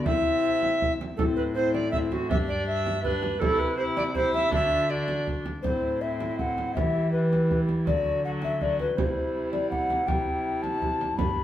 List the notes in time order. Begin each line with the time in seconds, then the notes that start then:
0.04 C3 C4 E4 E5, frame drum
0.62 frame drum
0.82 frame drum
1.01 frame drum
1.16 A2 C4 E4 A4, frame drum
1.36 B4
1.54 C4 E4 C5
1.73 D5, frame drum
1.91 C4 E4 E5, frame drum
2.10 F#4, frame drum
2.29 G2 D4 G4 E5, frame drum
2.47 D5
2.67 E5
2.86 frame drum
3.02 D4 G4 B4, frame drum
3.23 frame drum
3.39 C3 E4 G4 A4, frame drum
3.59 B4
3.76 E4 G4 C5
3.96 D5, frame drum
4.14 E4 G4 C5, frame drum
4.33 E5, frame drum
4.51 D3 D4 F#4 E5, frame drum
4.89 D4 F#4 D5
5.08 frame drum
5.27 frame drum
5.46 frame drum
5.62 A2 C4 E4 C5, frame drum
6.01 C4 E4 E5
6.20 frame drum
6.39 F#5, frame drum
6.58 frame drum
6.74 E3 G3 E4 E5, frame drum
7.12 G3 E4 B4
7.33 frame drum
7.51 frame drum
7.69 frame drum
7.86 D3 F#3 F#4 D5, frame drum
8.23 F#3 F#4 F#5
8.42 E5, frame drum
8.60 F#3 F#4 D5, frame drum
8.79 B4, frame drum
8.96 C3 G3 E4 C5, frame drum
9.52 D5, frame drum
9.70 F#5, frame drum
9.90 frame drum
10.07 G3 F#4 G5, frame drum
10.12 E4
10.62 A5, frame drum
10.82 frame drum
11.01 frame drum
11.16 G2 G3 D4 B5, frame drum